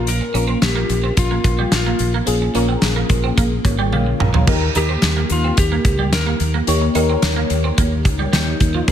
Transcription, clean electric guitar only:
0.21 muted clean electric guitar stroke
0.34 C#4
0.47 C4
0.75 A#3
0.90 muted clean electric guitar stroke
1.04 C4
1.31 A#3
1.45 muted clean electric guitar stroke
1.59 G3
1.86 A#3
2.01 muted clean electric guitar stroke
2.14 A#3
2.42 muted clean electric guitar stroke
2.55 C#4
2.69 C4
2.96 A#3
3.11 muted clean electric guitar stroke
3.24 C4
3.38 A#3
3.65 muted clean electric guitar stroke
3.79 G3
3.93 G3
4.07 muted clean electric guitar stroke
4.34 F3
4.61 muted clean electric guitar stroke
4.76 D#4
4.89 C4
5.17 A#3
5.30 muted clean electric guitar stroke
5.45 C4
5.72 A#3
5.85 muted clean electric guitar stroke
5.99 G3
6.27 A#3
6.40 muted clean electric guitar stroke
6.54 A#3
6.81 muted clean electric guitar stroke
6.95 D#4
7.10 C4
7.36 A#3
7.51 muted clean electric guitar stroke
7.64 C4
7.78 A#3
8.05 muted clean electric guitar stroke
8.19 G3
8.33 G3
8.47 muted clean electric guitar stroke
8.75 F3

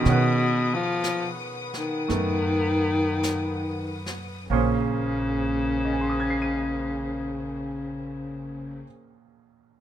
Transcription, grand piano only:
0.01 D#3 G#4
0.07 C#4 F#5
0.12 B4
2.08 A3 B3 D#4 A4
4.50 A#2 A#3 C#4 G#4 C5
5.85 D#5
5.93 G#5
6.01 C6
6.10 D#6
6.20 G#6
6.30 C7
6.42 D#7

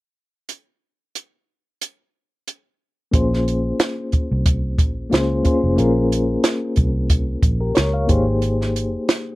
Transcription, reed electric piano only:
3.11 A#3 C#4 F4 G#4 C5
5.10 A#3 C#4 F4 G#4 C5
5.43 A#3 C#4 F4 G#4 C5
5.76 A#3 C#4 F4 G#4 A#4
7.60 G4 A#4
7.75 A#4 C#5
7.94 C#5 F5
8.07 A#3 D#4 G4 G#4 C5

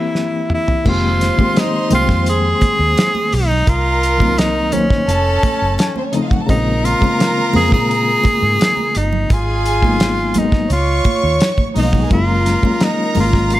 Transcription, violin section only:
0.86 C5 C6
3.68 A#4 A#5
5.08 A4 A5
5.97 C4 C5
6.05 C#4 C#5
6.14 D#4 D#5
6.23 F4 F5
6.31 F#4 F#5
6.41 A4 A5
6.49 A#4 A#5
9.31 G#4 G#5
10.70 C#5 C#6
11.77 D#4 D#5
11.85 F4 F5
11.94 F#4 F#5
12.03 G#4 G#5
12.12 A#4 A#5

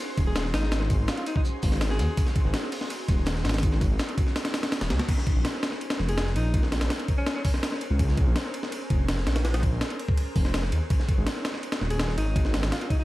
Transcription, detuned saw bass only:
0.18 D#1
0.54 G#1
0.99 G#1
1.63 G#1
2.00 D#2
2.45 G#1
3.09 D#1
3.45 G#1
3.90 G#1
4.81 D#1
4.91 C#2
5.36 A#1
6.00 F1
6.36 A#1
6.81 A#1
7.90 C#2
8.27 A#1
8.90 F1
9.27 A#1
9.72 A#1
10.36 F1
10.72 D#2
11.18 G#1
11.81 D#1
12.18 G#1
12.63 G#1

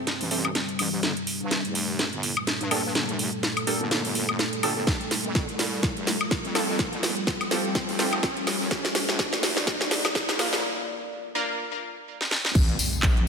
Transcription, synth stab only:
Already playing: C4 E4 G4 A4
0.31 C4 E4 G4 A4
2.71 A#3 D4 G4 A4
3.67 A#3 D4 G4 A4
4.63 A#3 D4 G4 A4
6.55 C4 F4 G4 A4
7.51 C4 F4 G4 A4
7.99 C4 F4 G4 A4
10.39 A#3 D4 F4 A#4
11.35 A#3 D4 F4 A#4

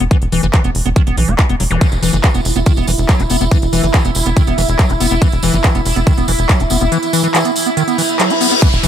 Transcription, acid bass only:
0.00 B3
0.11 E3
0.32 E3
0.43 E3
0.54 E3
0.64 B3
0.86 B3
0.96 D#3
1.07 B3
1.17 E3
1.28 B3
1.39 E4
1.49 B3
1.60 F#3
1.71 E3
1.81 E3
2.03 E3
2.13 E3
2.24 E3
2.34 B3
2.56 B3
2.66 D#3
2.77 B3
2.88 E3
3.09 F#3
3.20 F#4
3.30 B3
3.41 B3
3.52 E3
3.73 E3
3.83 E3
3.94 E3
4.05 B3
4.26 B3
4.37 D#3
4.47 B3
4.58 E3
4.79 F#3
4.90 F#4
5.00 B3
5.11 B3
5.22 E3
5.43 E3
5.54 E3
5.64 E3
5.75 B3
5.96 B3
6.07 D#3
6.17 B3
6.28 E3
6.49 F#3
6.60 F#4
6.71 B3
6.81 B3
6.92 E3
7.13 E3
7.24 E3
7.34 E3
7.45 B3
7.66 B3
7.77 D#3
7.88 B3
7.98 E3
8.20 F#3
8.30 F#4
8.41 B3
8.52 B3
8.62 E3
8.83 E3

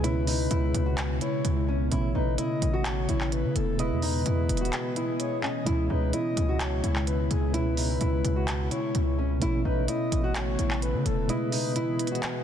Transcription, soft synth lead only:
0.04 B4
1.22 C#5
2.14 B4
2.38 D#5
2.86 C#5
3.32 B4
3.56 A4
3.79 B4
5.20 C#5
5.43 D#5
5.90 B4
6.14 D#5
6.60 C#5
7.07 B4
7.31 G#4
7.54 B4
8.72 C#5
9.65 B4
9.88 D#5
10.36 C#5
10.82 B4
11.06 A4
11.29 B4

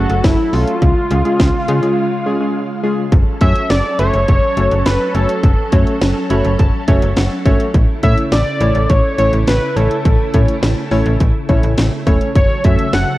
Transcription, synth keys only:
0.10 A3 C#4 F#4 A4
0.53 A3 C#4 F#4 A4
1.11 G#3 C#4 F4 G#4
1.25 G#3 C#4 F4 G#4
1.68 G#3 C#4 F4 G#4
1.83 G#3 C#4 F4 G#4
2.26 G#3 C#4 F4 G#4
2.40 G#3 C#4 F4 G#4
2.84 G#3 C#4 F4 G#4
3.41 A3 C#4 F#4 A4 C#5
3.99 A3 C#4 F#4 A4 E5
4.57 A3 C#4 F#4 A4 C#5
5.14 A3 C#4 F#4 A4 C#5
5.72 A3 C#4 F#4 A4 C#5
6.30 A3 C#4 F#4 A4 C#5 B5
6.59 A5
6.88 A3 C#4 F#4 A4 C#5 E5
7.16 F#5
7.45 A3 C#4 F#4 A4 C#5 E5
8.03 A3 C#4 E4 A4 C#5
8.61 A3 C#4 E4 A4 C#5
9.18 A3 C#4 E4 A4 C#5
9.76 A3 C#4 E4 A4 C#5
10.34 A3 C#4 E4 A4 C#5
10.91 A3 C#4 E4 A4 C#5
11.49 A3 C#4 E4 A4 C#5
12.07 A3 C#4 E4 A4 C#5
12.64 A3 C#4 F#4 A4 C#5

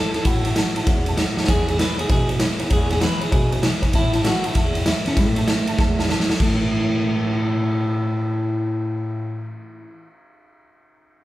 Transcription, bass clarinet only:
0.15 E2
0.25 A2
0.76 A2
0.87 E2
1.37 E2
1.48 E2
1.99 E2
2.10 B2
2.60 B2
2.71 E2
3.32 B2
3.83 B2
3.94 A2
4.44 A2
4.55 E2
5.07 E2
5.17 A2
5.68 A2
5.78 E2
6.30 E2
6.40 A2

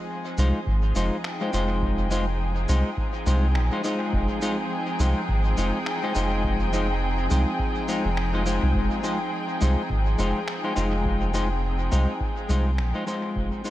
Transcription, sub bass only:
0.38 C2
0.67 G#1
0.96 F1
1.53 F1
2.69 C2
3.26 C2
3.55 A#1
4.13 F1
5.00 C2
5.29 G#1
5.58 F1
6.16 F1
7.31 C2
8.05 F1
8.63 C2
8.75 F1
9.62 C2
9.90 G#1
10.19 F1
10.77 F1
11.92 C2
12.49 C2
12.79 A#1
13.36 F1

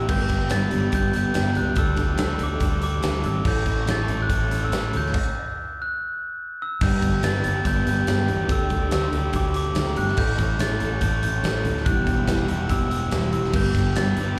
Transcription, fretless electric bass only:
0.09 G1
0.30 G1
0.52 G1
0.73 G1
0.93 G1
1.15 G1
1.36 G1
1.56 C#2
1.76 D2
1.98 D2
2.19 D2
2.40 D2
2.60 D2
3.04 D2
3.24 G#1
3.45 A1
3.66 A1
3.88 A1
4.09 A1
4.29 A1
4.51 A1
4.72 A1
4.94 D2
6.81 G1
7.03 G1
7.23 G1
7.45 G1
7.65 G1
7.87 G1
8.08 G1
8.29 E2
8.49 D2
8.71 D2
8.91 D2
9.12 D2
9.34 D2
9.75 D2
9.97 G1
10.17 A1
10.39 A1
10.59 A1
10.81 A1
11.02 A1
11.23 A1
11.44 A1
11.65 D2
11.86 E1
12.07 E1
12.28 E1
12.49 E1
12.70 E1
13.12 E1
13.33 E1
13.54 G1
13.74 G1
13.97 G1
14.17 G1

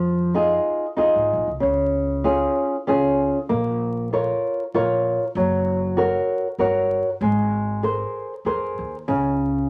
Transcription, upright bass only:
Already playing: F2
0.98 F2
1.16 G#1
1.33 A#1
1.48 C2
1.63 C#2
2.88 C#2
3.50 A#1
4.74 A#1
5.35 F#1
6.58 G1
7.21 G#1
8.45 F2
8.79 D#2
9.08 C#2

